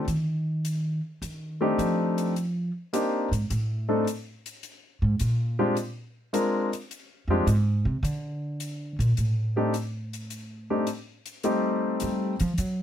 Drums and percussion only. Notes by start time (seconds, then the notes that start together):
0.08 closed hi-hat
0.65 closed hi-hat
1.22 closed hi-hat
1.79 closed hi-hat
2.18 closed hi-hat
2.36 closed hi-hat
2.94 closed hi-hat
3.33 closed hi-hat
3.50 closed hi-hat
4.07 closed hi-hat
4.46 closed hi-hat
4.63 closed hi-hat
5.19 closed hi-hat
5.77 closed hi-hat
6.34 closed hi-hat
6.73 closed hi-hat
6.91 closed hi-hat
7.47 closed hi-hat
8.04 closed hi-hat
8.60 closed hi-hat
9.00 closed hi-hat
9.17 closed hi-hat
9.74 closed hi-hat
10.13 closed hi-hat
10.30 closed hi-hat
10.87 closed hi-hat
11.26 closed hi-hat
11.43 closed hi-hat
12.00 closed hi-hat
12.40 closed hi-hat
12.58 closed hi-hat